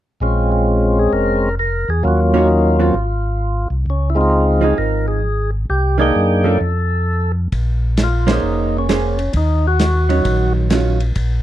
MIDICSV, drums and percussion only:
0, 0, Header, 1, 2, 480
1, 0, Start_track
1, 0, Key_signature, -5, "minor"
1, 0, Tempo, 456274
1, 222, Time_signature, 4, 2, 24, 8
1, 12019, End_track
2, 0, Start_track
2, 0, Title_t, "Drums"
2, 7914, Note_on_c, 9, 51, 43
2, 7916, Note_on_c, 9, 36, 30
2, 8019, Note_off_c, 9, 51, 0
2, 8021, Note_off_c, 9, 36, 0
2, 8388, Note_on_c, 9, 44, 52
2, 8388, Note_on_c, 9, 51, 59
2, 8392, Note_on_c, 9, 38, 57
2, 8493, Note_off_c, 9, 44, 0
2, 8493, Note_off_c, 9, 51, 0
2, 8497, Note_off_c, 9, 38, 0
2, 8707, Note_on_c, 9, 51, 55
2, 8711, Note_on_c, 9, 38, 72
2, 8812, Note_off_c, 9, 51, 0
2, 8816, Note_off_c, 9, 38, 0
2, 9353, Note_on_c, 9, 44, 50
2, 9353, Note_on_c, 9, 51, 57
2, 9357, Note_on_c, 9, 38, 53
2, 9458, Note_off_c, 9, 44, 0
2, 9458, Note_off_c, 9, 51, 0
2, 9462, Note_off_c, 9, 38, 0
2, 9664, Note_on_c, 9, 51, 41
2, 9769, Note_off_c, 9, 51, 0
2, 9818, Note_on_c, 9, 51, 50
2, 9826, Note_on_c, 9, 36, 29
2, 9923, Note_off_c, 9, 51, 0
2, 9932, Note_off_c, 9, 36, 0
2, 10303, Note_on_c, 9, 44, 57
2, 10303, Note_on_c, 9, 51, 58
2, 10307, Note_on_c, 9, 38, 58
2, 10408, Note_off_c, 9, 44, 0
2, 10408, Note_off_c, 9, 51, 0
2, 10413, Note_off_c, 9, 38, 0
2, 10624, Note_on_c, 9, 51, 40
2, 10729, Note_off_c, 9, 51, 0
2, 10782, Note_on_c, 9, 51, 57
2, 10785, Note_on_c, 9, 36, 30
2, 10887, Note_off_c, 9, 51, 0
2, 10890, Note_off_c, 9, 36, 0
2, 11259, Note_on_c, 9, 44, 49
2, 11259, Note_on_c, 9, 51, 56
2, 11263, Note_on_c, 9, 38, 63
2, 11364, Note_off_c, 9, 44, 0
2, 11364, Note_off_c, 9, 51, 0
2, 11368, Note_off_c, 9, 38, 0
2, 11575, Note_on_c, 9, 51, 43
2, 11680, Note_off_c, 9, 51, 0
2, 11735, Note_on_c, 9, 51, 51
2, 11740, Note_on_c, 9, 36, 29
2, 11840, Note_off_c, 9, 51, 0
2, 11845, Note_off_c, 9, 36, 0
2, 12019, End_track
0, 0, End_of_file